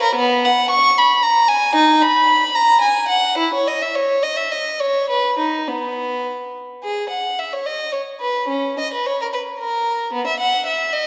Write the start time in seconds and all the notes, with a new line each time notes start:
0.03 A#4
0.15 B3
0.45 F#5
0.71 C#6
0.98 B5
1.23 A#5
1.48 G#5
1.76 D#4
2.01 B5
2.55 A#5
2.82 G#5
3.09 F#5
3.38 E4
3.54 C#5
3.68 D#5
3.82 E5
3.95 C#5
4.23 D#5
4.37 E5
4.51 D#5
4.80 C#5
5.10 B4
5.39 D#4
5.68 B3
6.84 G#4
7.10 F#5
7.39 E5
7.53 C#5
7.66 D#5
7.93 C#5
8.21 B4
8.48 C#4
8.79 D#5
8.93 B4
9.06 C#5
9.22 A#4
9.33 B4
9.60 A#4
10.13 B3
10.27 E5
10.40 F#5
10.66 E5
10.93 D#5